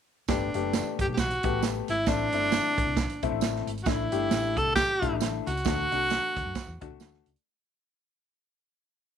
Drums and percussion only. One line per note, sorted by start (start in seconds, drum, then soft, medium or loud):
0.28 kick loud
0.28 snare loud
0.28 closed hi-hat medium
0.28 tambourine medium
0.54 closed hi-hat medium
0.73 snare loud
0.73 closed hi-hat medium
0.73 tambourine medium
0.99 kick medium
0.99 closed hi-hat medium
1.17 kick medium
1.17 snare loud
1.17 closed hi-hat medium
1.17 tambourine medium
1.30 closed hi-hat soft
1.43 kick medium
1.43 closed hi-hat medium
1.63 snare medium
1.63 closed hi-hat medium
1.63 tambourine medium
1.88 closed hi-hat medium
2.06 kick loud
2.06 snare loud
2.06 closed hi-hat medium
2.06 tambourine medium
2.32 closed hi-hat medium
2.52 snare loud
2.52 closed hi-hat medium
2.52 tambourine medium
2.78 kick medium
2.78 closed hi-hat medium
2.97 kick medium
2.97 snare loud
2.97 closed hi-hat medium
2.97 tambourine medium
3.09 closed hi-hat medium
3.22 kick medium
3.22 closed hi-hat medium
3.41 snare loud
3.41 closed hi-hat medium
3.41 tambourine medium
3.55 snare soft
3.67 closed hi-hat medium
3.77 closed hi-hat soft
3.86 kick loud
3.86 snare loud
3.86 closed hi-hat medium
3.86 tambourine medium
4.12 closed hi-hat medium
4.31 snare loud
4.31 closed hi-hat medium
4.31 tambourine medium
4.57 kick medium
4.57 closed hi-hat medium
4.76 kick medium
4.76 snare loud
4.76 closed hi-hat medium
4.76 tambourine medium
5.02 kick medium
5.02 closed hi-hat medium
5.21 snare medium
5.21 closed hi-hat medium
5.21 tambourine medium
5.47 closed hi-hat medium
5.57 closed hi-hat medium
5.65 kick loud
5.65 snare loud
5.65 closed hi-hat medium
5.65 tambourine medium
5.92 closed hi-hat medium
6.10 snare loud
6.10 closed hi-hat medium
6.10 tambourine medium
6.37 kick medium
6.37 closed hi-hat medium
6.55 kick medium
6.55 snare loud
6.55 closed hi-hat medium
6.55 tambourine medium
6.81 kick medium
6.81 closed hi-hat medium
7.00 snare loud
7.00 closed hi-hat medium
7.00 tambourine medium
7.13 snare soft
7.26 closed hi-hat medium
7.36 closed hi-hat medium